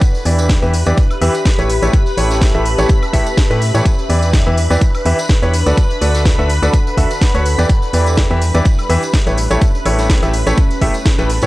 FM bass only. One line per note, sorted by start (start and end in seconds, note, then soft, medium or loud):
0.25 0.60 E2 medium
0.62 0.84 E2 loud
0.86 0.93 E2 medium
1.21 1.30 E2 medium
1.58 1.80 A1 loud
1.82 1.89 A1 medium
2.17 2.52 A1 medium
2.54 2.76 A1 loud
2.79 2.85 A1 loud
3.13 3.22 A1 medium
3.50 3.72 A2 loud
3.74 3.81 A2 loud
4.09 4.44 E2 medium
4.46 4.68 E2 loud
4.70 4.77 E2 medium
5.05 5.14 E2 medium
5.42 5.64 E2 loud
5.66 5.73 D2 loud
6.01 6.36 D2 medium
6.38 6.60 D2 loud
6.62 6.69 D2 medium
6.97 7.06 D2 medium
7.34 7.56 D2 loud
7.58 7.65 E2 medium
7.93 8.28 E2 loud
8.30 8.52 E2 loud
8.54 8.61 E2 loud
8.89 8.98 E2 loud
9.26 9.48 A1 loud
9.51 9.57 A1 medium
9.85 10.20 A1 medium
10.22 10.44 A1 loud
10.46 10.53 A1 loud
10.81 10.90 A1 loud
11.18 11.40 A1 loud
11.42 11.46 A2 loud